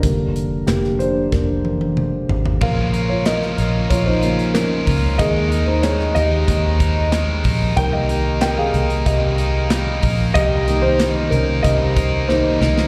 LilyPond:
<<
  \new Staff \with { instrumentName = "Grand piano" } { \time 4/4 \key bes \dorian \tempo 4 = 93 <d' bes'>4 <bes g'>8 <d' c''>8 <d' bes'>4. r8 | <bes' f''>8. <f' des''>16 <bes' ees''>4 <f' des''>16 <ees' c''>8. <des' bes'>8. r16 | <aes' ees''>8. <ees' c''>16 <aes' des''>8 <g' ees''>2 r8 | <bes' g''>16 <g' ees''>8. <bes' g''>16 <aes' f''>8. <g' ees''>4. r8 |
<g' ees''>8. <ees' c''>8. <des' bes'>8 <g' ees''>4 <ees' c''>4 | }
  \new Staff \with { instrumentName = "Grand piano" } { \clef bass \time 4/4 \key bes \dorian <d g bes>1 | <des f bes>2~ <des f bes>8 <des f bes>8 r4 | <ees aes bes>4. r2 r8 | <ees g bes>4. r2 r8 |
r8 <ees g bes>4. r4 <ees g bes>8 r8 | }
  \new Staff \with { instrumentName = "Overdriven electric guitar" } { \time 4/4 \key bes \dorian r1 | <bes, f des' f' bes'>8 <des' f' bes'>8 <f des' f' bes'>8 <des' f' bes'>8 <bes, f des' f' bes'>8 <des' f' bes'>8 <f des' f' bes'>8 <des' f' bes'>8 | <ees aes ees' bes'>8 <aes ees' bes'>8 <ees aes ees' bes'>8 <aes ees' bes'>8 <ees aes ees' bes'>8 <aes ees' bes'>8 <ees aes ees' bes'>8 <aes ees' bes'>8 | <c g bes ees' bes'>8 <bes ees' bes'>8 <g bes ees' bes'>8 <bes ees' bes'>8 <c g bes ees' bes'>8 <bes ees' bes'>8 <g bes ees' bes'>8 <bes ees' bes'>8 |
<c g bes ees' bes'>8 <bes ees' bes'>8 <g bes ees' bes'>8 <bes ees' bes'>8 <c g bes ees' bes'>8 <bes ees' bes'>8 <g bes ees' bes'>8 <bes ees' bes'>8 | }
  \new Staff \with { instrumentName = "Fingered electric bass" } { \clef bass \time 4/4 \key bes \dorian f,,4 f,,4 f,,4. aes,,8 | bes,,4. bes,,8 bes,,4. des,8 | ees,4. ees,8 ees,4. bes,,8 | c,4. c,8 c,4. bes,,8 |
c,4. c,8 c,4. c,8 | }
  \new DrumStaff \with { instrumentName = "Drums" } \drummode { \time 4/4 <hh bd>8 hh8 <hc hh sn>16 sn16 hh8 <bd sn>8 tommh16 tommh16 toml8 tomfh16 tomfh16 | <cymc bd>8 hh8 <hc hh sn>16 sn16 hh8 <hh bd>8 hh16 hh16 <hc hh sn>8 <hho bd>8 | <hh bd>8 hh8 <hc hh sn>16 sn16 hh8 <hh bd>8 <hh bd>8 <hc hh sn>8 <hho bd>8 | <hh bd>8 hh8 <hc hh sn>8 hh16 hh16 <hh bd>8 hh8 <hc hh sn>8 <hho bd>8 |
<hh bd>8 hh8 <hc hh sn>8 hh8 <hh bd>8 <hh bd>8 sn8 sn16 sn16 | }
>>